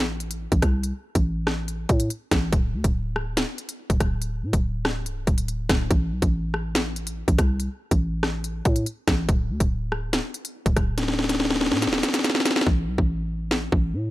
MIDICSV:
0, 0, Header, 1, 3, 480
1, 0, Start_track
1, 0, Tempo, 422535
1, 949, Time_signature, 4, 2, 24, 8
1, 16024, End_track
2, 0, Start_track
2, 0, Title_t, "808-style bass"
2, 0, Program_c, 0, 38
2, 0, Note_on_c, 0, 33, 104
2, 543, Note_off_c, 0, 33, 0
2, 588, Note_on_c, 0, 33, 103
2, 704, Note_off_c, 0, 33, 0
2, 709, Note_on_c, 0, 36, 106
2, 1055, Note_off_c, 0, 36, 0
2, 1309, Note_on_c, 0, 33, 99
2, 2115, Note_off_c, 0, 33, 0
2, 2150, Note_on_c, 0, 45, 101
2, 2380, Note_off_c, 0, 45, 0
2, 2630, Note_on_c, 0, 33, 107
2, 2860, Note_off_c, 0, 33, 0
2, 2869, Note_on_c, 0, 26, 107
2, 3109, Note_on_c, 0, 38, 97
2, 3126, Note_off_c, 0, 26, 0
2, 3223, Note_off_c, 0, 38, 0
2, 3229, Note_on_c, 0, 26, 101
2, 3920, Note_off_c, 0, 26, 0
2, 4428, Note_on_c, 0, 26, 103
2, 4544, Note_off_c, 0, 26, 0
2, 4549, Note_on_c, 0, 26, 110
2, 5029, Note_on_c, 0, 45, 97
2, 5046, Note_off_c, 0, 26, 0
2, 5143, Note_off_c, 0, 45, 0
2, 5149, Note_on_c, 0, 26, 108
2, 5748, Note_on_c, 0, 24, 102
2, 5765, Note_off_c, 0, 26, 0
2, 5977, Note_off_c, 0, 24, 0
2, 5989, Note_on_c, 0, 26, 103
2, 6450, Note_off_c, 0, 26, 0
2, 6469, Note_on_c, 0, 26, 104
2, 6700, Note_off_c, 0, 26, 0
2, 6708, Note_on_c, 0, 33, 108
2, 6949, Note_on_c, 0, 35, 98
2, 6966, Note_off_c, 0, 33, 0
2, 7063, Note_off_c, 0, 35, 0
2, 7068, Note_on_c, 0, 33, 100
2, 8223, Note_off_c, 0, 33, 0
2, 8268, Note_on_c, 0, 33, 103
2, 8384, Note_off_c, 0, 33, 0
2, 8390, Note_on_c, 0, 36, 103
2, 8735, Note_off_c, 0, 36, 0
2, 8989, Note_on_c, 0, 33, 100
2, 9795, Note_off_c, 0, 33, 0
2, 9830, Note_on_c, 0, 45, 99
2, 10060, Note_off_c, 0, 45, 0
2, 10310, Note_on_c, 0, 33, 107
2, 10540, Note_off_c, 0, 33, 0
2, 10549, Note_on_c, 0, 26, 107
2, 10788, Note_on_c, 0, 38, 98
2, 10805, Note_off_c, 0, 26, 0
2, 10903, Note_off_c, 0, 38, 0
2, 10909, Note_on_c, 0, 26, 98
2, 11600, Note_off_c, 0, 26, 0
2, 12108, Note_on_c, 0, 26, 101
2, 12224, Note_off_c, 0, 26, 0
2, 12229, Note_on_c, 0, 26, 106
2, 13308, Note_on_c, 0, 45, 102
2, 13325, Note_off_c, 0, 26, 0
2, 13488, Note_on_c, 0, 26, 101
2, 13505, Note_off_c, 0, 45, 0
2, 13660, Note_off_c, 0, 26, 0
2, 14389, Note_on_c, 0, 33, 103
2, 14628, Note_on_c, 0, 35, 101
2, 14645, Note_off_c, 0, 33, 0
2, 14742, Note_off_c, 0, 35, 0
2, 14748, Note_on_c, 0, 33, 98
2, 15555, Note_off_c, 0, 33, 0
2, 15589, Note_on_c, 0, 33, 105
2, 15829, Note_on_c, 0, 45, 97
2, 15846, Note_off_c, 0, 33, 0
2, 16024, Note_off_c, 0, 45, 0
2, 16024, End_track
3, 0, Start_track
3, 0, Title_t, "Drums"
3, 229, Note_on_c, 9, 42, 72
3, 343, Note_off_c, 9, 42, 0
3, 348, Note_on_c, 9, 42, 92
3, 462, Note_off_c, 9, 42, 0
3, 588, Note_on_c, 9, 36, 99
3, 588, Note_on_c, 9, 42, 70
3, 702, Note_off_c, 9, 36, 0
3, 702, Note_off_c, 9, 42, 0
3, 708, Note_on_c, 9, 42, 82
3, 709, Note_on_c, 9, 37, 104
3, 710, Note_on_c, 9, 36, 97
3, 822, Note_off_c, 9, 37, 0
3, 822, Note_off_c, 9, 42, 0
3, 823, Note_off_c, 9, 36, 0
3, 948, Note_on_c, 9, 42, 78
3, 1062, Note_off_c, 9, 42, 0
3, 1308, Note_on_c, 9, 36, 91
3, 1309, Note_on_c, 9, 42, 84
3, 1422, Note_off_c, 9, 36, 0
3, 1422, Note_off_c, 9, 42, 0
3, 1668, Note_on_c, 9, 37, 101
3, 1668, Note_on_c, 9, 38, 72
3, 1782, Note_off_c, 9, 37, 0
3, 1782, Note_off_c, 9, 38, 0
3, 1909, Note_on_c, 9, 42, 73
3, 2022, Note_off_c, 9, 42, 0
3, 2148, Note_on_c, 9, 42, 71
3, 2150, Note_on_c, 9, 36, 105
3, 2262, Note_off_c, 9, 42, 0
3, 2263, Note_off_c, 9, 36, 0
3, 2269, Note_on_c, 9, 42, 93
3, 2382, Note_off_c, 9, 42, 0
3, 2389, Note_on_c, 9, 42, 80
3, 2503, Note_off_c, 9, 42, 0
3, 2629, Note_on_c, 9, 37, 101
3, 2629, Note_on_c, 9, 38, 122
3, 2629, Note_on_c, 9, 42, 82
3, 2630, Note_on_c, 9, 36, 100
3, 2742, Note_off_c, 9, 42, 0
3, 2743, Note_off_c, 9, 36, 0
3, 2743, Note_off_c, 9, 37, 0
3, 2743, Note_off_c, 9, 38, 0
3, 2869, Note_on_c, 9, 36, 125
3, 2869, Note_on_c, 9, 42, 82
3, 2982, Note_off_c, 9, 36, 0
3, 2982, Note_off_c, 9, 42, 0
3, 3228, Note_on_c, 9, 36, 91
3, 3229, Note_on_c, 9, 42, 85
3, 3342, Note_off_c, 9, 36, 0
3, 3343, Note_off_c, 9, 42, 0
3, 3589, Note_on_c, 9, 37, 100
3, 3702, Note_off_c, 9, 37, 0
3, 3828, Note_on_c, 9, 38, 110
3, 3829, Note_on_c, 9, 42, 75
3, 3942, Note_off_c, 9, 38, 0
3, 3942, Note_off_c, 9, 42, 0
3, 4069, Note_on_c, 9, 42, 72
3, 4183, Note_off_c, 9, 42, 0
3, 4189, Note_on_c, 9, 42, 94
3, 4302, Note_off_c, 9, 42, 0
3, 4428, Note_on_c, 9, 36, 96
3, 4429, Note_on_c, 9, 42, 67
3, 4542, Note_off_c, 9, 36, 0
3, 4543, Note_off_c, 9, 42, 0
3, 4549, Note_on_c, 9, 36, 97
3, 4549, Note_on_c, 9, 37, 101
3, 4549, Note_on_c, 9, 42, 81
3, 4662, Note_off_c, 9, 37, 0
3, 4662, Note_off_c, 9, 42, 0
3, 4663, Note_off_c, 9, 36, 0
3, 4789, Note_on_c, 9, 42, 80
3, 4903, Note_off_c, 9, 42, 0
3, 5149, Note_on_c, 9, 36, 94
3, 5149, Note_on_c, 9, 42, 81
3, 5262, Note_off_c, 9, 36, 0
3, 5263, Note_off_c, 9, 42, 0
3, 5509, Note_on_c, 9, 37, 101
3, 5509, Note_on_c, 9, 38, 74
3, 5623, Note_off_c, 9, 37, 0
3, 5623, Note_off_c, 9, 38, 0
3, 5749, Note_on_c, 9, 42, 74
3, 5863, Note_off_c, 9, 42, 0
3, 5989, Note_on_c, 9, 42, 73
3, 5990, Note_on_c, 9, 36, 108
3, 6102, Note_off_c, 9, 42, 0
3, 6103, Note_off_c, 9, 36, 0
3, 6109, Note_on_c, 9, 42, 91
3, 6223, Note_off_c, 9, 42, 0
3, 6229, Note_on_c, 9, 42, 82
3, 6343, Note_off_c, 9, 42, 0
3, 6469, Note_on_c, 9, 37, 103
3, 6469, Note_on_c, 9, 38, 125
3, 6469, Note_on_c, 9, 42, 83
3, 6470, Note_on_c, 9, 36, 100
3, 6582, Note_off_c, 9, 42, 0
3, 6583, Note_off_c, 9, 36, 0
3, 6583, Note_off_c, 9, 37, 0
3, 6583, Note_off_c, 9, 38, 0
3, 6709, Note_on_c, 9, 36, 121
3, 6709, Note_on_c, 9, 42, 81
3, 6822, Note_off_c, 9, 36, 0
3, 6822, Note_off_c, 9, 42, 0
3, 7068, Note_on_c, 9, 36, 91
3, 7069, Note_on_c, 9, 42, 85
3, 7182, Note_off_c, 9, 36, 0
3, 7182, Note_off_c, 9, 42, 0
3, 7428, Note_on_c, 9, 37, 99
3, 7542, Note_off_c, 9, 37, 0
3, 7668, Note_on_c, 9, 38, 106
3, 7669, Note_on_c, 9, 42, 72
3, 7782, Note_off_c, 9, 38, 0
3, 7782, Note_off_c, 9, 42, 0
3, 7909, Note_on_c, 9, 42, 73
3, 8023, Note_off_c, 9, 42, 0
3, 8029, Note_on_c, 9, 42, 93
3, 8143, Note_off_c, 9, 42, 0
3, 8268, Note_on_c, 9, 36, 99
3, 8269, Note_on_c, 9, 42, 71
3, 8382, Note_off_c, 9, 36, 0
3, 8383, Note_off_c, 9, 42, 0
3, 8389, Note_on_c, 9, 37, 100
3, 8389, Note_on_c, 9, 42, 85
3, 8390, Note_on_c, 9, 36, 96
3, 8503, Note_off_c, 9, 36, 0
3, 8503, Note_off_c, 9, 37, 0
3, 8503, Note_off_c, 9, 42, 0
3, 8630, Note_on_c, 9, 42, 79
3, 8743, Note_off_c, 9, 42, 0
3, 8989, Note_on_c, 9, 36, 92
3, 8989, Note_on_c, 9, 42, 83
3, 9102, Note_off_c, 9, 36, 0
3, 9103, Note_off_c, 9, 42, 0
3, 9349, Note_on_c, 9, 37, 101
3, 9349, Note_on_c, 9, 38, 74
3, 9463, Note_off_c, 9, 37, 0
3, 9463, Note_off_c, 9, 38, 0
3, 9589, Note_on_c, 9, 42, 74
3, 9703, Note_off_c, 9, 42, 0
3, 9829, Note_on_c, 9, 42, 75
3, 9830, Note_on_c, 9, 36, 105
3, 9943, Note_off_c, 9, 42, 0
3, 9944, Note_off_c, 9, 36, 0
3, 9949, Note_on_c, 9, 42, 89
3, 10063, Note_off_c, 9, 42, 0
3, 10069, Note_on_c, 9, 42, 85
3, 10183, Note_off_c, 9, 42, 0
3, 10309, Note_on_c, 9, 42, 81
3, 10310, Note_on_c, 9, 36, 99
3, 10310, Note_on_c, 9, 37, 97
3, 10310, Note_on_c, 9, 38, 126
3, 10423, Note_off_c, 9, 37, 0
3, 10423, Note_off_c, 9, 38, 0
3, 10423, Note_off_c, 9, 42, 0
3, 10424, Note_off_c, 9, 36, 0
3, 10549, Note_on_c, 9, 36, 119
3, 10549, Note_on_c, 9, 42, 79
3, 10663, Note_off_c, 9, 36, 0
3, 10663, Note_off_c, 9, 42, 0
3, 10909, Note_on_c, 9, 36, 95
3, 10909, Note_on_c, 9, 42, 84
3, 11022, Note_off_c, 9, 36, 0
3, 11023, Note_off_c, 9, 42, 0
3, 11269, Note_on_c, 9, 37, 98
3, 11382, Note_off_c, 9, 37, 0
3, 11509, Note_on_c, 9, 38, 104
3, 11509, Note_on_c, 9, 42, 74
3, 11622, Note_off_c, 9, 38, 0
3, 11623, Note_off_c, 9, 42, 0
3, 11749, Note_on_c, 9, 42, 73
3, 11863, Note_off_c, 9, 42, 0
3, 11869, Note_on_c, 9, 42, 92
3, 11983, Note_off_c, 9, 42, 0
3, 12108, Note_on_c, 9, 36, 100
3, 12109, Note_on_c, 9, 42, 70
3, 12222, Note_off_c, 9, 36, 0
3, 12222, Note_off_c, 9, 42, 0
3, 12229, Note_on_c, 9, 37, 103
3, 12229, Note_on_c, 9, 42, 83
3, 12230, Note_on_c, 9, 36, 98
3, 12343, Note_off_c, 9, 36, 0
3, 12343, Note_off_c, 9, 37, 0
3, 12343, Note_off_c, 9, 42, 0
3, 12469, Note_on_c, 9, 38, 64
3, 12469, Note_on_c, 9, 42, 80
3, 12529, Note_off_c, 9, 38, 0
3, 12529, Note_on_c, 9, 38, 56
3, 12583, Note_off_c, 9, 42, 0
3, 12589, Note_off_c, 9, 38, 0
3, 12589, Note_on_c, 9, 38, 65
3, 12649, Note_off_c, 9, 38, 0
3, 12649, Note_on_c, 9, 38, 57
3, 12709, Note_off_c, 9, 38, 0
3, 12709, Note_on_c, 9, 38, 72
3, 12769, Note_off_c, 9, 38, 0
3, 12769, Note_on_c, 9, 38, 64
3, 12829, Note_off_c, 9, 38, 0
3, 12829, Note_on_c, 9, 38, 73
3, 12829, Note_on_c, 9, 42, 84
3, 12889, Note_off_c, 9, 38, 0
3, 12889, Note_on_c, 9, 38, 62
3, 12943, Note_off_c, 9, 42, 0
3, 12949, Note_off_c, 9, 38, 0
3, 12949, Note_on_c, 9, 38, 75
3, 13008, Note_off_c, 9, 38, 0
3, 13008, Note_on_c, 9, 38, 68
3, 13069, Note_off_c, 9, 38, 0
3, 13069, Note_on_c, 9, 38, 80
3, 13129, Note_off_c, 9, 38, 0
3, 13129, Note_on_c, 9, 38, 72
3, 13189, Note_off_c, 9, 38, 0
3, 13189, Note_on_c, 9, 38, 82
3, 13249, Note_off_c, 9, 38, 0
3, 13249, Note_on_c, 9, 38, 71
3, 13309, Note_off_c, 9, 38, 0
3, 13309, Note_on_c, 9, 38, 84
3, 13369, Note_off_c, 9, 38, 0
3, 13369, Note_on_c, 9, 38, 76
3, 13429, Note_off_c, 9, 38, 0
3, 13429, Note_on_c, 9, 38, 87
3, 13429, Note_on_c, 9, 42, 74
3, 13489, Note_off_c, 9, 38, 0
3, 13489, Note_on_c, 9, 38, 79
3, 13543, Note_off_c, 9, 42, 0
3, 13548, Note_off_c, 9, 38, 0
3, 13548, Note_on_c, 9, 38, 92
3, 13609, Note_off_c, 9, 38, 0
3, 13609, Note_on_c, 9, 38, 77
3, 13669, Note_off_c, 9, 38, 0
3, 13669, Note_on_c, 9, 38, 96
3, 13669, Note_on_c, 9, 42, 73
3, 13729, Note_off_c, 9, 38, 0
3, 13729, Note_on_c, 9, 38, 81
3, 13782, Note_off_c, 9, 42, 0
3, 13789, Note_off_c, 9, 38, 0
3, 13789, Note_on_c, 9, 38, 99
3, 13789, Note_on_c, 9, 42, 94
3, 13849, Note_off_c, 9, 38, 0
3, 13849, Note_on_c, 9, 38, 81
3, 13903, Note_off_c, 9, 42, 0
3, 13909, Note_off_c, 9, 38, 0
3, 13909, Note_on_c, 9, 38, 102
3, 13909, Note_on_c, 9, 42, 80
3, 13968, Note_off_c, 9, 38, 0
3, 13968, Note_on_c, 9, 38, 87
3, 14022, Note_off_c, 9, 42, 0
3, 14028, Note_off_c, 9, 38, 0
3, 14028, Note_on_c, 9, 38, 101
3, 14088, Note_off_c, 9, 38, 0
3, 14088, Note_on_c, 9, 38, 89
3, 14148, Note_off_c, 9, 38, 0
3, 14148, Note_on_c, 9, 38, 110
3, 14148, Note_on_c, 9, 42, 83
3, 14208, Note_off_c, 9, 38, 0
3, 14208, Note_on_c, 9, 38, 94
3, 14262, Note_off_c, 9, 42, 0
3, 14269, Note_off_c, 9, 38, 0
3, 14269, Note_on_c, 9, 38, 116
3, 14328, Note_off_c, 9, 38, 0
3, 14328, Note_on_c, 9, 38, 100
3, 14388, Note_on_c, 9, 36, 124
3, 14442, Note_off_c, 9, 38, 0
3, 14502, Note_off_c, 9, 36, 0
3, 14748, Note_on_c, 9, 36, 92
3, 14862, Note_off_c, 9, 36, 0
3, 15348, Note_on_c, 9, 38, 100
3, 15462, Note_off_c, 9, 38, 0
3, 15589, Note_on_c, 9, 36, 102
3, 15703, Note_off_c, 9, 36, 0
3, 16024, End_track
0, 0, End_of_file